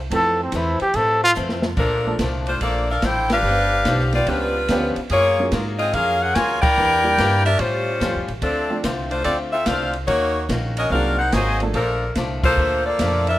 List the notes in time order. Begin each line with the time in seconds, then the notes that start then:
0.10 F2 E3 F3 A3 C4 E4 A4, kick, ride
0.14 A4
0.43 C4
0.52 E2 F2 E3 A3 C4, kick, hi-hat pedal, ride
0.56 E4
0.80 G4, muted upright bass stroke, ride
0.94 F2 A2 E3 A3 C4 A4, kick, ride
1.24 F4
1.35 F2 E3 A3 C4, hi-hat pedal
1.49 snare
1.62 snare
1.77 A#1 A#2 F3 A3 D4 A4 A#4, kick, crash
2.06 F3 A3 A#3 D4 A4
2.19 C2 A#2 F3 A3 D4, kick, snare, hi-hat pedal, ride
2.47 A3 D4 F4 C5, ride
2.61 A#1 A#2 F3 A3 A#3 F4 A4 D5, kick, ride
2.65 D4
2.91 D4 A4 A#4 F5
3.02 A1 A#2 F3 A3 D4 E4 A4 C5 G5, kick, snare, hi-hat pedal, ride
3.30 D4 G4 B4 F5, snare, ride
3.43 G1 G2 F3 B3
3.47 C#4
3.85 B1 G2 F3 B3 C#4, kick, snare, hi-hat pedal, ride
3.99 snare
4.12 B3 F4 G4 D5, snare, ride
4.26 C#2 G2 F3 G3 B3 C#4 D4 F4 G4 B4, kick, ride
4.31 C#4
4.68 D2 G2 F3 B3 C#4 D4 G4, kick, snare, hi-hat pedal, ride
4.96 muted upright bass stroke, ride
5.09 F#2 F#3 A#3 F4 G#4 C#5, kick, ride
5.39 F#3 A#3 C#4 F4 G#4
5.52 G#2 F#3 A#3 F4 G#4, kick, snare, hi-hat pedal, ride
5.79 C4 F4 G#4 D#5, ride
5.93 F2 F#3 A#3 C#4 F4 G#4 A#4 F5, kick, ride
6.22 C#4 G#4 A#4 F#5
6.35 C#2 F#3 A#3 F4 G#4 A#4 C#5 G#5, kick, snare, hi-hat pedal, ride
6.62 E4 A#4 D5 G5, kick, crash
6.77 E2 E3 A#3 D4 G4
7.04 E3 G3 A#3 D4 G4
7.18 G2 E3 A#3 D4 G4, kick, snare, hi-hat pedal, ride
7.46 D4 G4 A#4 E5, ride
7.59 A2 G3 C#4 F4 C5, kick, ride
8.00 F2 A2 G3 C#4 F4, kick, snare, hi-hat pedal, ride
8.15 C#2
8.28 A1, ride
8.42 D2 D3 F3 A3 C4 D4 F4 A4, kick, ride
8.70 F3 A3 C4 D4 A4
8.84 C2 D3 A3 C4 F4, kick, snare, hi-hat pedal, ride
9.11 A3 D4 F4 C5, ride
9.24 D2 D3 A3 C4 F4 A4 D5, kick, ride
9.52 C4 F4 A4 E5
9.66 C2 D3 A3 C4 D4 F4 A4 C5 F5, kick, snare, hi-hat pedal, ride
9.93 ride
10.07 D#2 D#3 A#3 C#4 D#4 F#4 C#5, kick, ride
10.49 A#1 D#3 A#3 C#4 F#4, kick, snare, hi-hat pedal, ride
10.77 C#4 F#4 A#4 D#5, ride
10.90 C2 G#2 F#3 A#3 C4 D4 D#4 F#4 G#4 A#4 F5, kick
11.19 D#4 A#4 C5 F#5
11.32 G#1 G#2 F#3 A#3 C4 F#4 C5 D#5 G#5, kick, snare, hi-hat pedal, ride
11.60 F3 A3 A#3 D4 A4, ride
11.74 A#1 A#2 F3 A3 D4 A4 A#4, kick, ride
12.15 C2 A#2 F3 A3 D4, kick, snare, hi-hat pedal, ride
12.44 A#3 F4 A4 C5, kick, crash
12.57 D2 A#2 F3 A3 D4
12.86 A#3 F4 A4 D5
12.99 F2 A#2 F3 A3 D4, kick, snare, hi-hat pedal, ride
13.27 D4 A4 A#4 E5, ride